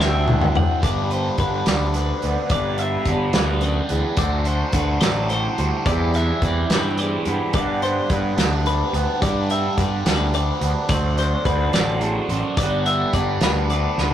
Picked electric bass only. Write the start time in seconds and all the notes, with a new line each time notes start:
Already playing: D2
0.83 G1
1.38 G1
1.67 D2
2.24 D2
2.50 G1
3.06 G1
3.35 D2
3.90 D2
4.18 D2
4.73 D2
5.03 A1
5.58 D2
5.86 E2
6.42 E2
6.70 G2
7.26 G2
7.54 G2
8.10 G2
8.37 D2
8.93 D2
9.22 G2
9.77 G2
10.06 D2
10.61 D2
10.89 D2
11.45 D2
11.73 A1
12.29 A1
12.57 G1
13.13 G1
13.41 D2
13.98 D2